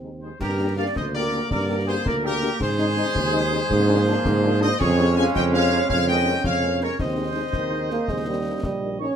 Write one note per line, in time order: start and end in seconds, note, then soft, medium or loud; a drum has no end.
0.00 0.31 D#2 medium
0.00 0.10 G#3 soft
0.00 0.37 C4 soft
0.00 0.10 C4 soft
0.00 0.10 D#4 soft
0.22 0.29 G#3 soft
0.22 0.29 C4 soft
0.22 0.29 D#4 soft
0.22 0.28 G#4 soft
0.22 0.39 C5 medium
0.40 0.86 G2 medium
0.40 2.57 D3 medium
0.40 2.57 A#3 medium
0.40 0.75 G4 loud
0.40 0.74 A#4 loud
0.40 concert bass drum medium
0.40 snare medium
0.40 crash medium
0.59 0.66 A#3 medium
0.59 0.66 D4 medium
0.59 0.66 G4 medium
0.77 0.84 A#3 medium
0.77 0.84 D4 medium
0.77 0.84 G4 medium
0.77 0.95 D5 medium
0.77 0.85 F5 loud
0.95 1.42 D2 medium
0.95 1.14 C5 loud
0.95 1.04 D#5 loud
0.95 concert bass drum medium
0.95 snare medium
1.14 1.22 A#3 medium
1.14 1.22 D4 medium
1.14 1.22 G4 medium
1.14 1.49 A#4 loud
1.14 1.48 D5 loud
1.33 1.40 A#3 medium
1.33 1.40 D4 medium
1.33 1.40 G4 medium
1.33 snare medium
1.51 1.96 G2 medium
1.51 1.85 A#4 loud
1.51 1.85 D5 loud
1.51 concert bass drum medium
1.51 snare medium
1.69 1.76 A#3 medium
1.69 1.75 D4 medium
1.69 1.75 G4 medium
1.87 1.95 A#3 medium
1.87 1.95 D4 medium
1.87 1.95 G4 medium
1.87 2.04 G#4 medium
1.87 2.04 C5 loud
2.05 2.51 D2 medium
2.05 2.22 A#4 loud
2.05 2.15 D5 loud
2.05 concert bass drum medium
2.05 snare medium
2.24 2.32 A#3 medium
2.24 2.31 D4 medium
2.24 2.61 G4 loud
2.24 2.32 G4 medium
2.24 2.59 A#4 loud
2.43 2.49 A#3 medium
2.43 2.49 D4 medium
2.43 2.49 G4 medium
2.43 snare medium
2.60 3.00 G#2 loud
2.60 3.67 D#3 medium
2.60 3.70 G#3 loud
2.60 4.58 G#4 loud
2.60 4.58 C5 loud
2.60 concert bass drum medium
2.60 snare medium
2.60 crash soft
2.79 2.85 G#3 medium
2.79 2.85 C4 medium
2.79 2.85 D#4 medium
2.97 3.04 G#3 medium
2.97 3.04 C4 medium
2.97 3.04 D#4 medium
3.14 3.60 D#2 loud
3.14 concert bass drum medium
3.14 snare medium
3.33 3.40 G#3 medium
3.33 3.40 C4 medium
3.33 3.40 D#4 medium
3.52 3.59 G#3 medium
3.52 3.59 C4 medium
3.52 3.58 D#4 medium
3.52 snare medium
3.70 4.15 G#2 loud
3.70 4.81 F3 loud
3.70 4.81 A#3 loud
3.70 concert bass drum loud
3.70 snare medium
3.88 3.95 F3 medium
3.88 3.95 A#3 medium
3.88 3.95 D4 medium
4.07 4.14 F3 loud
4.07 4.14 A#3 medium
4.07 4.14 D4 medium
4.25 4.70 G#2 loud
4.25 concert bass drum medium
4.25 snare medium
4.44 4.50 F3 loud
4.44 4.51 A#3 medium
4.44 4.50 D4 medium
4.61 4.68 F3 medium
4.61 4.68 A#3 medium
4.61 4.68 D4 loud
4.61 4.80 C5 loud
4.61 4.78 D#5 loud
4.61 snare medium
4.79 5.26 F2 loud
4.79 6.96 G#3 loud
4.79 6.95 C#4 loud
4.79 5.13 G#4 loud
4.79 5.16 C#5 loud
4.79 concert bass drum medium
4.79 snare medium
4.79 crash soft
4.98 5.05 F3 medium
4.98 5.05 G#3 medium
4.98 5.05 C#4 loud
5.16 5.24 F3 medium
5.16 5.24 G#3 medium
5.16 5.24 C#4 medium
5.16 5.33 F5 loud
5.16 5.24 G#5 loud
5.34 5.80 F2 loud
5.34 5.40 D#5 loud
5.34 5.43 G5 loud
5.34 concert bass drum medium
5.34 snare medium
5.53 5.60 F3 loud
5.53 5.59 G#3 loud
5.53 5.60 C#4 medium
5.53 5.87 C#5 loud
5.53 5.87 F5 loud
5.71 5.79 F3 loud
5.71 5.79 G#3 medium
5.71 5.79 C#4 medium
5.71 snare medium
5.89 6.35 F2 loud
5.89 6.06 C#5 loud
5.89 6.07 F5 loud
5.89 concert bass drum loud
5.89 snare medium
6.08 6.15 G#3 medium
6.08 6.15 A#3 medium
6.08 6.15 C#4 medium
6.08 6.42 D#5 loud
6.08 6.42 G5 loud
6.27 6.33 G#3 medium
6.27 6.33 A#3 medium
6.27 6.33 C#4 medium
6.44 6.90 F2 medium
6.44 6.79 C#5 loud
6.44 6.79 F5 loud
6.44 concert bass drum medium
6.44 snare medium
6.62 6.69 G#3 medium
6.62 6.69 A#3 medium
6.62 6.69 C#4 medium
6.81 6.88 G#3 medium
6.81 6.88 A#3 medium
6.81 6.88 C#4 medium
6.81 7.00 A#4 loud
6.81 6.99 C#5 loud
6.81 snare medium
6.99 7.45 D#2 medium
6.99 8.05 G#3 medium
6.99 8.05 C4 medium
6.99 8.70 C5 loud
6.99 8.96 D#5 medium
6.99 concert bass drum medium
6.99 snare medium
6.99 crash soft
7.17 7.23 G#3 medium
7.17 7.23 C4 medium
7.17 7.23 D#4 medium
7.35 7.42 G#3 medium
7.35 7.42 C4 medium
7.35 7.42 D#4 medium
7.53 7.99 D#2 medium
7.53 7.88 D#3 medium
7.53 concert bass drum medium
7.53 snare medium
7.72 7.78 G#3 medium
7.72 7.78 C4 medium
7.72 7.78 D#4 medium
7.90 7.97 G#3 medium
7.90 8.11 A#3 medium
7.90 7.96 C4 medium
7.90 7.97 D#4 medium
7.90 snare medium
8.08 8.54 D#2 medium
8.08 9.00 G3 medium
8.08 8.26 G#3 medium
8.08 9.00 A#3 medium
8.08 concert bass drum medium
8.08 snare medium
8.27 8.61 G3 medium
8.27 8.34 G3 medium
8.27 8.34 A#3 medium
8.27 8.34 D#4 medium
8.46 8.52 G3 medium
8.46 8.52 A#3 medium
8.46 8.52 D#4 medium
8.63 9.09 A#1 medium
8.63 8.98 G3 medium
8.63 concert bass drum medium
8.63 snare medium
8.82 8.88 G3 medium
8.82 8.88 A#3 medium
8.82 8.89 D#4 medium
8.99 9.06 G3 medium
8.99 9.06 A#3 medium
8.99 9.16 C#4 medium
8.99 9.06 D#4 medium
8.99 9.16 C#5 medium
8.99 9.16 C#6 medium